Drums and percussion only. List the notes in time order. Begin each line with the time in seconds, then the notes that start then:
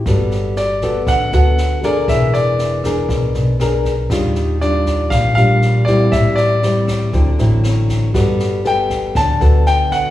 0.06 kick, cross-stick, snare
0.31 snare
0.56 snare
0.81 kick, snare
1.07 kick, cross-stick, snare
1.32 snare
1.58 snare
1.83 kick, snare
2.08 kick, cross-stick, snare
2.34 snare
2.59 snare
2.84 kick, cross-stick, snare
3.09 kick, snare
3.34 snare
3.60 cross-stick, snare
3.85 kick, snare
4.10 kick, cross-stick, snare
4.35 snare
4.61 snare
4.86 kick, snare
5.11 kick, cross-stick, snare
5.36 snare
5.62 snare
5.87 kick, snare
6.12 kick, cross-stick, snare
6.37 snare
6.63 snare
6.88 kick, cross-stick, snare
7.13 kick, snare
7.38 snare
7.64 cross-stick, snare
7.89 kick, snare
8.14 kick, cross-stick, snare
8.39 snare
8.65 snare
8.90 kick, snare
9.15 kick, cross-stick, snare
9.40 snare
9.66 snare
9.91 kick, snare